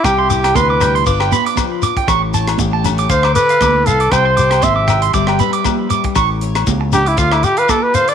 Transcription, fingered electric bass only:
X:1
M:4/4
L:1/8
Q:"Swing 16ths" 1/4=118
K:C
V:1 name="Fingered electric bass" clef=bass
C,,2 D,,2 G,,, z3 | A,,,2 A,,,2 D,, z D,, C,, | C,,2 _A,,,2 G,,, z3 | A,,,2 ^C,,2 D,, z3 |]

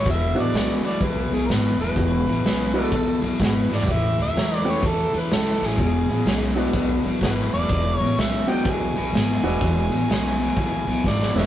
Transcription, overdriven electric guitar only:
X:1
M:4/4
L:1/8
Q:"Swing" 1/4=126
K:Emix
V:1 name="Overdriven electric guitar" clef=bass
[E,,B,,] [E,,B,,] [E,,C,] [E,,B,,] [E,,B,,] [E,,B,,] [E,,B,,] [E,,B,,] | [E,,B,,] [E,,B,,] [E,,C,] [E,,B,,] [E,,B,,] [E,,B,,] [E,,B,,] [E,,B,,] | [A,,E,] [A,,E,] [A,,F,] [A,,E,] [A,,E,] [A,,E,] [A,,E,] [A,,E,] | [E,,B,,] [E,,B,,] [E,,C,] [E,,B,,] [E,,B,,] [E,,B,,] [E,,B,,] [E,,B,,] |
[E,,B,,] [E,,B,,] [E,,C,] [E,,B,,] [E,,B,,] [E,,B,,] [E,,B,,] [E,,B,,] | [E,,B,,] [E,,B,,] [E,,C,] [E,,B,,] [E,,B,,] [E,,B,,] [E,,B,,] [E,,B,,] |]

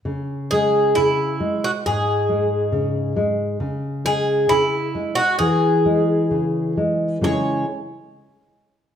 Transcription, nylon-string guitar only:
X:1
M:2/4
L:1/8
Q:1/4=67
K:C#m
V:1 name="Nylon-string guitar" clef=bass
C, G, C, G, | G,, G, C, G, | C, G, C, G, | E, G, C, G, |
[C,G,CEG] z3 |]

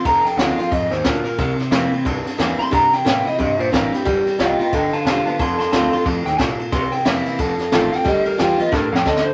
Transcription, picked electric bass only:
X:1
M:4/4
L:1/8
Q:"Swing" 1/4=180
K:Cmix
V:1 name="Picked electric bass" clef=bass
F,,, z D,, z F,, _E,, D,, z | C,, z F,, z C,, z E,, z | G,, z A,, z C, B,, A,,, z | G,,, z C,, z G,,, z E,,, z |
F,,, z D,, z F,, _E,, C,, z | C,, z F,, z F,,, z A,,, z | G,,, z E,, z G,, F,, D,, z |]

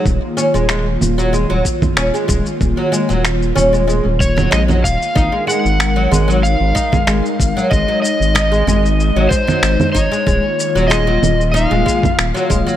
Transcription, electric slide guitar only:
X:1
M:4/4
L:1/8
Q:"Swing 16ths" 1/4=94
K:Ebdor
V:1 name="Electric slide guitar"
z8 | z4 z d e f- | f g3 f4 | e e4 c2 d- |
d2 e2 f4 |]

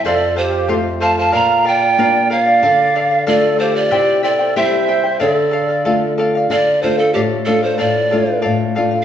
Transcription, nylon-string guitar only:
X:1
M:2/4
L:1/8
Q:1/4=93
K:Dm
V:1 name="Nylon-string guitar"
F,,2 [A,CF]2 | B,,2 [B,DF]2 | D,2 [A,DF]2 | C,2 [G,CE]2 |
D,2 [A,DF]2 | D, [A,DF] A,, [A,DF] | A,, [A,DF] A,, [A,DF] |]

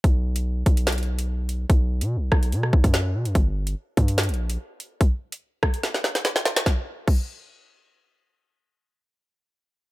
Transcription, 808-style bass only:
X:1
M:4/4
L:1/16
Q:1/4=145
K:Glyd
V:1 name="808-style bass" clef=bass
B,,,6 B,,,8- B,,,2 | B,,,3 B,,3/2 B,,,3/2 B,,,2 B,,2 B,,, F,,3 B,, F,, | G,,,4 z2 G,,3 _B,,,3 z4 | z16 |
z16 | z16 |]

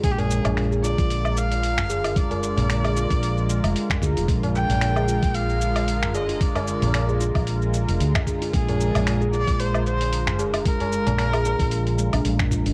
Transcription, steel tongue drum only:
X:1
M:4/4
L:1/16
Q:"Swing 16ths" 1/4=113
K:Bbmix
V:1 name="Steel tongue drum"
A, B4 A F F4 z3 A F | A, B4 A F z6 z A F | A, B4 A F z6 z A F | A, B4 A F z6 z A F |
A, B4 A F F4 z3 A F | A, B4 A F F3 A, D A, z F D |]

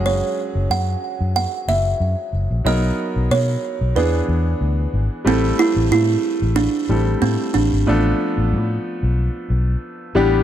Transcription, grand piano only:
X:1
M:4/4
L:1/8
Q:"Swing 16ths" 1/4=92
K:F#mix
V:1 name="Grand piano"
[F,G,CG]6- [F,G,CG] z | [F,B,DA]4 [E,B,=DG]4 | [K:Am] [G,A,CEA]4- [G,A,CEA] [G,A,CEA]3 | [F,A,B,DA]6- [F,A,B,DA] [E,G,B,DG] |]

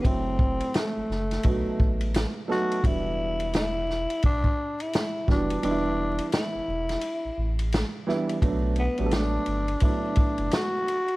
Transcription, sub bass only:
X:1
M:4/4
L:1/16
Q:"Swing 16ths" 1/4=86
K:Em
V:1 name="Sub bass" clef=bass
F,,,4 z F,,, F,,,2 B,,, A,,, A,,,3 z3 | E,,,6- E,,, z B,,,2 z4 =F,,,2 | E,,,4 z E,,, E,,,2 z A,,, A,,,3 z3 | B,,,3 A,,,3 G,,,2 z3 F,,, z4 |]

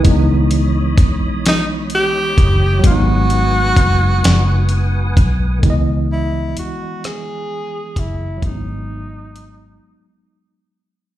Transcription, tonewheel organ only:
X:1
M:6/8
L:1/8
Q:3/8=43
K:C#m
V:1 name="Tonewheel organ"
[cdbd']6 | [Bfgd']6 | z6 | z6 |]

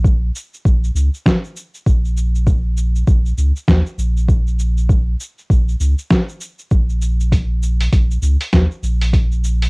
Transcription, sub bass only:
X:1
M:4/4
L:1/8
Q:"Swing 16ths" 1/4=99
K:Bbm
V:1 name="Sub bass" clef=bass
B,,, z B,,, D,, z2 B,,,2- | B,,,2 B,,, D,, E,, B,,,3- | B,,, z B,,, D,, z2 B,,,2- | B,,,2 B,,, D,, E,, B,,,3 |]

